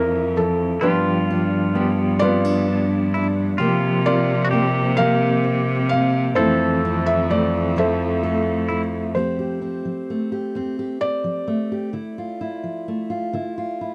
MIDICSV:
0, 0, Header, 1, 6, 480
1, 0, Start_track
1, 0, Key_signature, -1, "major"
1, 0, Tempo, 925926
1, 423, Time_signature, 6, 3, 24, 8
1, 7229, End_track
2, 0, Start_track
2, 0, Title_t, "Felt piano"
2, 0, Program_c, 0, 0
2, 0, Note_on_c, 0, 70, 85
2, 192, Note_on_c, 0, 69, 72
2, 193, Note_off_c, 0, 70, 0
2, 411, Note_off_c, 0, 69, 0
2, 425, Note_on_c, 0, 71, 69
2, 428, Note_on_c, 0, 62, 52
2, 429, Note_on_c, 0, 65, 48
2, 883, Note_off_c, 0, 71, 0
2, 1124, Note_off_c, 0, 62, 0
2, 1125, Note_off_c, 0, 65, 0
2, 1138, Note_on_c, 0, 74, 108
2, 1149, Note_on_c, 0, 65, 71
2, 1151, Note_on_c, 0, 71, 76
2, 1658, Note_off_c, 0, 74, 0
2, 1843, Note_off_c, 0, 65, 0
2, 1844, Note_off_c, 0, 71, 0
2, 2104, Note_on_c, 0, 74, 93
2, 2107, Note_on_c, 0, 70, 57
2, 2109, Note_on_c, 0, 65, 65
2, 2575, Note_on_c, 0, 77, 99
2, 2576, Note_off_c, 0, 70, 0
2, 2584, Note_on_c, 0, 70, 73
2, 2595, Note_off_c, 0, 74, 0
2, 2802, Note_off_c, 0, 65, 0
2, 3047, Note_off_c, 0, 77, 0
2, 3055, Note_on_c, 0, 77, 86
2, 3281, Note_off_c, 0, 70, 0
2, 3294, Note_on_c, 0, 72, 74
2, 3305, Note_off_c, 0, 77, 0
2, 3305, Note_on_c, 0, 64, 54
2, 3307, Note_on_c, 0, 69, 59
2, 3662, Note_on_c, 0, 76, 88
2, 3668, Note_off_c, 0, 72, 0
2, 3773, Note_off_c, 0, 76, 0
2, 3787, Note_on_c, 0, 74, 76
2, 4003, Note_off_c, 0, 64, 0
2, 4004, Note_off_c, 0, 69, 0
2, 4008, Note_off_c, 0, 74, 0
2, 4033, Note_on_c, 0, 76, 81
2, 4039, Note_on_c, 0, 69, 61
2, 4041, Note_on_c, 0, 72, 59
2, 4548, Note_off_c, 0, 76, 0
2, 4732, Note_off_c, 0, 69, 0
2, 4733, Note_off_c, 0, 72, 0
2, 4742, Note_on_c, 0, 72, 71
2, 5707, Note_on_c, 0, 74, 91
2, 5735, Note_off_c, 0, 72, 0
2, 7229, Note_off_c, 0, 74, 0
2, 7229, End_track
3, 0, Start_track
3, 0, Title_t, "Pedal steel guitar"
3, 0, Program_c, 1, 26
3, 0, Note_on_c, 1, 67, 78
3, 420, Note_on_c, 1, 65, 83
3, 469, Note_off_c, 1, 67, 0
3, 1198, Note_off_c, 1, 65, 0
3, 1198, Note_on_c, 1, 64, 83
3, 1629, Note_off_c, 1, 64, 0
3, 1629, Note_on_c, 1, 64, 74
3, 1692, Note_off_c, 1, 64, 0
3, 1856, Note_on_c, 1, 65, 95
3, 2302, Note_off_c, 1, 65, 0
3, 2305, Note_on_c, 1, 66, 71
3, 2335, Note_off_c, 1, 66, 0
3, 2337, Note_on_c, 1, 67, 95
3, 3298, Note_on_c, 1, 69, 104
3, 3327, Note_off_c, 1, 67, 0
3, 4503, Note_on_c, 1, 64, 58
3, 4539, Note_off_c, 1, 69, 0
3, 4568, Note_off_c, 1, 64, 0
3, 7229, End_track
4, 0, Start_track
4, 0, Title_t, "Clean electric guitar"
4, 0, Program_c, 2, 27
4, 0, Note_on_c, 2, 52, 81
4, 0, Note_on_c, 2, 60, 61
4, 0, Note_on_c, 2, 64, 51
4, 423, Note_off_c, 2, 52, 0
4, 425, Note_on_c, 2, 53, 87
4, 429, Note_on_c, 2, 67, 64
4, 471, Note_off_c, 2, 64, 0
4, 472, Note_off_c, 2, 60, 0
4, 904, Note_on_c, 2, 59, 57
4, 906, Note_on_c, 2, 62, 52
4, 908, Note_off_c, 2, 67, 0
4, 910, Note_on_c, 2, 67, 65
4, 1139, Note_off_c, 2, 59, 0
4, 1145, Note_on_c, 2, 59, 60
4, 1379, Note_off_c, 2, 62, 0
4, 1386, Note_on_c, 2, 62, 47
4, 1859, Note_off_c, 2, 67, 0
4, 1861, Note_off_c, 2, 53, 0
4, 1863, Note_on_c, 2, 53, 78
4, 1865, Note_on_c, 2, 67, 75
4, 1909, Note_off_c, 2, 59, 0
4, 1910, Note_off_c, 2, 62, 0
4, 2341, Note_off_c, 2, 67, 0
4, 2342, Note_on_c, 2, 58, 55
4, 2345, Note_on_c, 2, 60, 63
4, 2347, Note_on_c, 2, 67, 61
4, 2575, Note_off_c, 2, 58, 0
4, 2581, Note_on_c, 2, 58, 64
4, 2819, Note_off_c, 2, 60, 0
4, 2821, Note_on_c, 2, 60, 51
4, 3299, Note_off_c, 2, 53, 0
4, 3301, Note_on_c, 2, 52, 75
4, 3302, Note_off_c, 2, 60, 0
4, 3304, Note_on_c, 2, 60, 70
4, 3349, Note_off_c, 2, 58, 0
4, 3352, Note_off_c, 2, 67, 0
4, 3775, Note_off_c, 2, 52, 0
4, 3781, Note_off_c, 2, 60, 0
4, 3781, Note_on_c, 2, 52, 54
4, 3783, Note_on_c, 2, 57, 52
4, 3787, Note_on_c, 2, 60, 57
4, 4022, Note_off_c, 2, 52, 0
4, 4257, Note_off_c, 2, 57, 0
4, 4263, Note_on_c, 2, 57, 55
4, 4792, Note_off_c, 2, 57, 0
4, 4795, Note_off_c, 2, 60, 0
4, 7229, End_track
5, 0, Start_track
5, 0, Title_t, "Steel-string acoustic guitar"
5, 0, Program_c, 3, 25
5, 0, Note_on_c, 3, 60, 56
5, 0, Note_on_c, 3, 64, 57
5, 188, Note_on_c, 3, 41, 54
5, 397, Note_off_c, 3, 60, 0
5, 398, Note_off_c, 3, 64, 0
5, 424, Note_off_c, 3, 41, 0
5, 426, Note_on_c, 3, 43, 61
5, 431, Note_on_c, 3, 59, 55
5, 677, Note_on_c, 3, 62, 60
5, 856, Note_off_c, 3, 43, 0
5, 902, Note_off_c, 3, 59, 0
5, 909, Note_on_c, 3, 59, 56
5, 1149, Note_on_c, 3, 55, 65
5, 1150, Note_off_c, 3, 62, 0
5, 1153, Note_on_c, 3, 60, 61
5, 1268, Note_off_c, 3, 60, 0
5, 1268, Note_on_c, 3, 62, 47
5, 1577, Note_off_c, 3, 55, 0
5, 1624, Note_off_c, 3, 62, 0
5, 1633, Note_on_c, 3, 62, 60
5, 1835, Note_off_c, 3, 59, 0
5, 1838, Note_off_c, 3, 62, 0
5, 1865, Note_on_c, 3, 48, 55
5, 1868, Note_on_c, 3, 58, 50
5, 2109, Note_on_c, 3, 60, 58
5, 2293, Note_off_c, 3, 48, 0
5, 2340, Note_off_c, 3, 58, 0
5, 2346, Note_on_c, 3, 58, 57
5, 2583, Note_on_c, 3, 53, 68
5, 2584, Note_off_c, 3, 60, 0
5, 2587, Note_on_c, 3, 60, 54
5, 3013, Note_off_c, 3, 53, 0
5, 3072, Note_off_c, 3, 60, 0
5, 3074, Note_on_c, 3, 60, 57
5, 3274, Note_off_c, 3, 58, 0
5, 3304, Note_on_c, 3, 41, 62
5, 3308, Note_on_c, 3, 57, 49
5, 3547, Note_off_c, 3, 60, 0
5, 3550, Note_on_c, 3, 64, 62
5, 3735, Note_off_c, 3, 41, 0
5, 3780, Note_off_c, 3, 57, 0
5, 3786, Note_on_c, 3, 57, 47
5, 4021, Note_off_c, 3, 64, 0
5, 4024, Note_on_c, 3, 53, 61
5, 4027, Note_on_c, 3, 64, 61
5, 4268, Note_on_c, 3, 69, 58
5, 4456, Note_off_c, 3, 53, 0
5, 4503, Note_off_c, 3, 64, 0
5, 4509, Note_on_c, 3, 64, 55
5, 4717, Note_off_c, 3, 57, 0
5, 4718, Note_off_c, 3, 64, 0
5, 4718, Note_off_c, 3, 69, 0
5, 4741, Note_on_c, 3, 41, 53
5, 4745, Note_on_c, 3, 53, 40
5, 4748, Note_on_c, 3, 57, 41
5, 4752, Note_on_c, 3, 60, 41
5, 4754, Note_on_c, 3, 67, 45
5, 4861, Note_off_c, 3, 67, 0
5, 4867, Note_on_c, 3, 67, 44
5, 4979, Note_off_c, 3, 60, 0
5, 4986, Note_on_c, 3, 60, 48
5, 5105, Note_off_c, 3, 53, 0
5, 5107, Note_on_c, 3, 53, 48
5, 5176, Note_off_c, 3, 41, 0
5, 5234, Note_off_c, 3, 57, 0
5, 5236, Note_on_c, 3, 57, 43
5, 5343, Note_off_c, 3, 67, 0
5, 5349, Note_on_c, 3, 67, 47
5, 5467, Note_off_c, 3, 60, 0
5, 5470, Note_on_c, 3, 41, 63
5, 5475, Note_on_c, 3, 60, 46
5, 5540, Note_off_c, 3, 53, 0
5, 5587, Note_off_c, 3, 67, 0
5, 5593, Note_on_c, 3, 67, 51
5, 5702, Note_off_c, 3, 60, 0
5, 5708, Note_on_c, 3, 60, 43
5, 5827, Note_on_c, 3, 53, 49
5, 5901, Note_off_c, 3, 41, 0
5, 5946, Note_off_c, 3, 57, 0
5, 5949, Note_on_c, 3, 57, 46
5, 6068, Note_off_c, 3, 67, 0
5, 6074, Note_on_c, 3, 67, 47
5, 6162, Note_off_c, 3, 67, 0
5, 6184, Note_on_c, 3, 50, 53
5, 6186, Note_off_c, 3, 60, 0
5, 6187, Note_off_c, 3, 53, 0
5, 6188, Note_on_c, 3, 64, 44
5, 6315, Note_on_c, 3, 65, 46
5, 6426, Note_off_c, 3, 64, 0
5, 6433, Note_on_c, 3, 64, 49
5, 6550, Note_on_c, 3, 53, 45
5, 6618, Note_off_c, 3, 50, 0
5, 6675, Note_off_c, 3, 57, 0
5, 6677, Note_on_c, 3, 57, 42
5, 6784, Note_off_c, 3, 65, 0
5, 6791, Note_on_c, 3, 65, 51
5, 6910, Note_off_c, 3, 64, 0
5, 6912, Note_on_c, 3, 50, 65
5, 6917, Note_on_c, 3, 64, 53
5, 6981, Note_off_c, 3, 53, 0
5, 7029, Note_off_c, 3, 65, 0
5, 7038, Note_on_c, 3, 65, 52
5, 7152, Note_off_c, 3, 64, 0
5, 7160, Note_on_c, 3, 64, 41
5, 7229, Note_off_c, 3, 50, 0
5, 7229, Note_off_c, 3, 57, 0
5, 7229, Note_off_c, 3, 64, 0
5, 7229, Note_off_c, 3, 65, 0
5, 7229, End_track
6, 0, Start_track
6, 0, Title_t, "Cello"
6, 0, Program_c, 4, 42
6, 0, Note_on_c, 4, 41, 74
6, 422, Note_on_c, 4, 43, 72
6, 430, Note_off_c, 4, 41, 0
6, 1863, Note_on_c, 4, 48, 87
6, 1870, Note_off_c, 4, 43, 0
6, 3298, Note_on_c, 4, 41, 87
6, 3305, Note_off_c, 4, 48, 0
6, 4722, Note_off_c, 4, 41, 0
6, 7229, End_track
0, 0, End_of_file